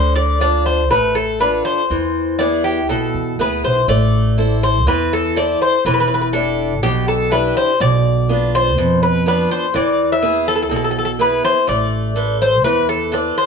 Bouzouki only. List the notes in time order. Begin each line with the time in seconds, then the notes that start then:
Already playing: C5
0.16 D5
0.41 D5
0.66 C5
0.91 B4
1.15 A4
1.40 B4
1.65 C5
2.39 D5
2.64 G4
2.89 A4
3.41 B4
3.64 C5
3.89 D5
4.63 C5
4.88 B4
5.13 A4
5.37 D5
5.62 C5
5.86 B4
5.94 B4
6.00 B4
6.08 B4
6.14 B4
6.21 B4
6.33 A4
6.83 G4
7.08 A4
7.32 B4
7.57 C5
7.81 D5
8.55 C5
9.03 B4
9.28 B4
9.51 C5
9.76 D5
10.12 E5
10.48 A4
10.56 A4
10.62 A4
10.69 A4
10.76 A4
10.84 A4
10.91 A4
10.98 A4
11.05 A4
11.21 B4
11.45 C5
11.68 D5
12.42 C5
12.64 B4
12.89 A4
13.14 D5
13.38 C5